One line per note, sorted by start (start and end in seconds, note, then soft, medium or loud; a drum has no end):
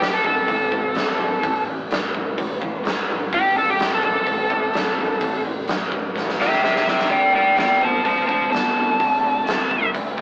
0.00 0.19 A1 medium
0.00 0.21 A2 medium
0.00 0.11 B2 medium
0.00 0.22 F#3 medium
0.00 0.13 G4 medium
0.00 snare loud
0.00 open hi-hat soft
0.12 0.23 C3 medium
0.12 0.24 A4 medium
0.24 0.43 A1 medium
0.24 0.45 A2 medium
0.24 1.62 C3 medium
0.24 0.46 F#3 medium
0.24 1.63 A4 medium
0.24 kick medium
0.47 0.67 A1 medium
0.47 0.69 A2 medium
0.47 0.70 E3 medium
0.47 kick medium
0.47 open hi-hat soft
0.72 0.90 A1 medium
0.72 0.93 A2 medium
0.72 0.93 E3 medium
0.72 kick medium
0.94 1.13 A1 medium
0.94 1.16 A2 medium
0.94 1.17 F#3 medium
0.94 snare loud
0.94 open hi-hat medium
1.19 1.37 A1 medium
1.19 1.40 A2 medium
1.19 1.40 F#3 medium
1.42 1.61 A1 medium
1.42 1.63 A2 medium
1.42 1.64 E3 medium
1.42 kick loud
1.42 open hi-hat soft
1.65 1.84 A1 medium
1.65 1.88 A2 medium
1.65 1.88 E3 medium
1.90 2.09 A1 medium
1.90 2.12 A2 medium
1.90 2.12 F#3 medium
1.90 snare loud
1.90 open hi-hat soft
2.15 2.33 A1 medium
2.15 2.35 A2 medium
2.15 2.35 F#3 medium
2.15 kick medium
2.38 2.56 A1 medium
2.38 2.59 A2 medium
2.38 2.59 E3 medium
2.38 kick medium
2.38 open hi-hat soft
2.61 2.80 A1 medium
2.61 2.82 A2 medium
2.61 2.83 E3 medium
2.61 kick medium
2.83 3.03 A1 medium
2.83 3.05 A2 medium
2.83 3.06 F#3 medium
2.83 snare loud
2.83 open hi-hat soft
3.09 3.28 A1 medium
3.09 3.30 A2 medium
3.09 3.30 F#3 medium
3.33 3.51 A1 medium
3.33 3.54 A2 medium
3.33 3.54 B2 medium
3.33 3.54 E3 medium
3.33 3.56 G4 medium
3.33 kick loud
3.33 open hi-hat soft
3.55 3.74 A1 medium
3.55 3.77 A2 medium
3.55 3.66 C3 medium
3.55 3.77 E3 medium
3.55 3.68 A4 medium
3.66 3.89 B2 medium
3.70 3.92 G4 medium
3.79 3.98 A1 medium
3.79 4.00 A2 medium
3.79 4.01 F#3 medium
3.79 snare loud
3.79 open hi-hat soft
3.89 4.00 C3 medium
3.95 4.04 A4 medium
4.02 4.21 A1 medium
4.02 4.24 A2 medium
4.02 5.40 C3 medium
4.02 4.24 F#3 medium
4.02 5.42 A4 medium
4.02 kick medium
4.26 4.45 A1 medium
4.26 4.47 A2 medium
4.26 4.47 E3 medium
4.26 kick medium
4.26 open hi-hat soft
4.50 4.68 A1 medium
4.50 4.71 A2 medium
4.50 4.72 E3 medium
4.50 kick medium
4.73 4.92 A1 medium
4.73 4.95 A2 medium
4.73 4.95 F#3 medium
4.73 snare loud
4.73 open hi-hat soft
4.97 5.15 A1 medium
4.97 5.19 A2 medium
4.97 5.19 F#3 medium
5.21 5.39 A1 medium
5.21 5.42 A2 medium
5.21 5.43 E3 medium
5.21 kick loud
5.21 open hi-hat medium
5.45 5.63 A1 medium
5.45 5.66 A2 medium
5.45 5.66 E3 medium
5.68 5.86 A1 medium
5.68 5.89 A2 medium
5.68 5.90 F#3 medium
5.68 snare loud
5.68 open hi-hat soft
5.92 6.10 A1 medium
5.92 6.13 A2 medium
5.92 6.14 F#3 medium
5.92 kick medium
6.16 6.34 A1 medium
6.16 6.37 A2 medium
6.16 6.37 E3 medium
6.16 kick medium
6.16 snare medium
6.29 snare medium
6.39 6.57 A1 medium
6.39 6.61 A2 medium
6.39 6.61 E3 medium
6.39 6.62 G3 medium
6.39 6.62 G4 medium
6.39 6.63 E5 medium
6.39 snare medium
6.52 snare medium
6.63 6.81 A1 medium
6.63 6.84 A2 medium
6.63 6.85 F#3 medium
6.63 6.85 G3 medium
6.63 6.85 G4 medium
6.63 6.86 E5 medium
6.63 snare medium
6.76 snare medium
6.86 7.05 C2 medium
6.86 7.09 A2 medium
6.86 7.09 F#3 medium
6.86 7.09 G3 medium
6.86 7.09 G4 medium
6.86 7.11 E5 medium
6.86 snare medium
6.99 snare medium
7.09 7.28 D2 medium
7.09 7.32 D3 medium
7.09 7.32 A3 medium
7.09 7.33 C4 medium
7.09 7.32 D5 medium
7.09 7.34 G5 medium
7.09 kick loud
7.09 open hi-hat soft
7.33 7.52 D2 medium
7.33 7.55 D3 medium
7.33 7.55 A3 medium
7.33 7.57 B3 medium
7.33 7.57 D5 medium
7.33 7.58 G5 medium
7.56 7.75 D2 medium
7.56 7.79 D3 medium
7.56 7.79 B3 medium
7.56 7.80 D5 medium
7.56 7.81 G5 medium
7.56 snare loud
7.56 open hi-hat soft
7.60 7.81 C4 medium
7.81 7.99 D2 medium
7.81 8.02 D3 medium
7.81 8.03 B3 medium
7.81 8.04 C4 medium
7.81 8.04 C5 medium
7.81 8.04 A5 medium
7.81 kick medium
8.05 8.23 D2 medium
8.05 8.26 D3 medium
8.05 8.26 A3 medium
8.05 8.29 C4 medium
8.05 8.27 C5 medium
8.05 8.26 A5 medium
8.05 kick medium
8.05 open hi-hat soft
8.27 8.47 D2 medium
8.27 8.49 D3 medium
8.27 8.49 A3 medium
8.27 8.50 C5 medium
8.27 8.51 A5 medium
8.27 kick medium
8.33 8.52 C4 medium
8.50 8.69 D2 medium
8.50 8.72 D3 medium
8.50 8.73 B3 medium
8.50 9.90 C4 medium
8.50 9.90 A5 medium
8.50 open hi-hat soft
8.55 snare loud
8.75 8.93 D2 medium
8.75 8.97 D3 medium
8.75 8.97 B3 medium
8.99 9.18 D2 medium
8.99 9.20 D3 medium
8.99 9.21 A3 medium
8.99 kick loud
8.99 open hi-hat soft
9.22 9.41 D2 medium
9.22 9.44 D3 medium
9.22 9.44 A3 medium
9.46 9.64 D2 medium
9.46 9.67 D3 medium
9.46 9.67 B3 medium
9.46 snare loud
9.46 open hi-hat medium
9.71 9.89 D2 medium
9.71 9.92 D3 medium
9.71 9.92 B3 medium
9.71 kick medium
9.93 10.12 D2 medium
9.93 10.15 D3 medium
9.93 10.15 A3 medium
9.93 kick medium
9.93 open hi-hat soft
10.17 10.21 D2 medium
10.17 10.21 D3 medium
10.17 10.21 A3 medium
10.17 kick medium